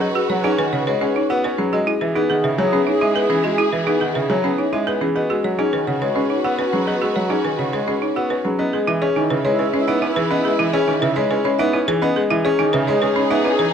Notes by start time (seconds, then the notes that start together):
Already playing: F#4 B4
0.01 G#4 D#5
0.09 B4
0.15 F#4 G#4
0.30 F#3 C#5 F#5
0.39 B4
0.44 C#4 D#4 G#4
0.58 D#3 B4 G#5
0.69 C#3 B4 C#5
0.73 F#5
0.87 G#3 B4 C#5
0.99 C#4 G#4 B4
1.16 D#4 C#5
1.29 B3 F#4 B4 F#5
1.44 C#4 B4
1.58 F#3 C#4 G#4
1.72 G#3 E4 F#4 G#4 D#5
1.87 E4 G#4
2.01 E3 G#4 B4 E5
2.15 B3 D#4 G#4
2.30 D#3 G#4 F#5
2.44 C#3 B4 E5
2.58 F#3 G#4 C#5
2.63 G#4
2.72 B3 C#4 G#4
2.87 D#4 C#5
2.92 G#4
3.01 G#3 E4 E5
3.15 B3 G#4 B4
3.22 G#4
3.29 E3 C#4 G#4
3.44 G#3 F#4 D#5
3.52 G#4
3.58 E4 G#4
3.73 E3 B4 E5
3.82 G#4
3.87 B3 D#4 G#4
4.01 D#3 G#4 F#5
4.12 C#3 G#4 B4 E5
4.30 F#3 G#4 C#5
4.41 B3 C#4 G#4
4.59 D#4 C#5
4.72 G#3 E4 G#4 E5
4.87 B3 G#4 B4
5.01 E3 C#4 G#4
5.15 B3 F#4 G#4 B4 D#5
5.30 G#3 F#4 G#4
5.44 F#3 F#4 C#5 F#5
5.59 C#4 D#4 G#4
5.73 D#3 F#4 B4 G#5
5.87 C#3 C#5 F#5
6.01 G#3 B4 C#5
6.06 F#4
6.16 C#4 G#4
6.30 D#4 C#5
6.35 F#4
6.44 B3 F#4 F#5
6.59 C#4 B4
6.65 F#4
6.73 F#3 C#4 G#4
6.87 B3 G#4 D#5
6.95 F#4
7.01 G#3 F#4 G#4
7.16 F#3 C#5 F#5
7.24 F#4
7.30 C#4 D#4 G#4
7.45 D#3 B4 G#5
7.54 F#4
7.59 C#3 C#5 F#5
7.73 G#3 B4 C#5
7.84 C#4 F#4 G#4
8.02 D#4 C#5
8.15 B3 F#4 F#5
8.30 C#4 B4
8.45 F#3 C#4 G#4
8.59 B3 C#4 E4 B4 D#5
8.73 G#3 G#4
8.87 E3 E4 E5
9.02 C#4 G#4 C#5
9.16 D#3 D#4 E4 G#5
9.30 C#3 B4 E5
9.45 G#3 E4 C#5
9.59 C#4 G#4 B4
9.73 G#3 C#4 C#5
9.78 E4
9.88 B3 D#4 E5
10.02 C#4 E4 B4
10.08 E4
10.16 E3 G#4 B4
10.31 B3 C#4 D#5
10.38 E4
10.45 G#3 G#4
10.59 E3 E4 E5
10.68 E4
10.73 C#4 G#4 C#5
10.88 D#3 D#4 G#5
10.97 E4
11.02 C#3 B4 E5
11.16 G#3 C#5
11.28 C#4 E4 G#4 B4
11.44 G#3 C#4 C#5
11.57 B3 D#4 E4 E5
11.73 C#4 E4 B4
11.87 E3 G#4 B4
12.02 B3 C#4 D#4 G#4 D#5
12.16 G#3 G#4
12.30 E3 E4 G#4 E5
12.45 C#4 G#4 C#5
12.59 D#3 D#4 G#4 G#5
12.73 C#3 B4 E5
12.87 G#3 C#5
12.91 G#4
13.02 C#4 G#4 B4
13.16 G#3 C#4 C#5
13.21 G#4
13.30 B3 D#4 E5
13.45 C#4 E4 B4
13.50 G#4
13.59 E3 G#4 B4